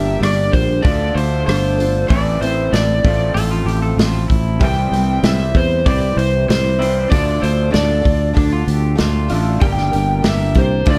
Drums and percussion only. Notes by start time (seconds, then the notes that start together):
0.23 cross-stick, open hi-hat
0.53 kick, open hi-hat
0.85 kick, open hi-hat
1.17 open hi-hat
1.49 cross-stick, open hi-hat
1.80 open hi-hat
2.10 kick, open hi-hat
2.42 open hi-hat
2.73 snare, open hi-hat
3.05 kick, open hi-hat
3.37 open hi-hat
3.68 open hi-hat
3.99 snare, open hi-hat
4.30 kick, open hi-hat
4.61 kick, open hi-hat
4.93 open hi-hat
5.23 snare, open hi-hat
5.55 kick, open hi-hat
5.86 kick, open hi-hat
6.19 open hi-hat
6.50 snare, open hi-hat
6.82 open hi-hat
7.12 kick, open hi-hat
7.43 open hi-hat
7.74 snare, open hi-hat
8.05 kick, open hi-hat
8.37 kick, open hi-hat
8.68 open hi-hat
8.98 snare, open hi-hat
9.29 open hi-hat
9.61 kick, open hi-hat
9.77 snare
9.93 open hi-hat
10.24 snare, open hi-hat
10.54 kick, open hi-hat
10.86 kick, open hi-hat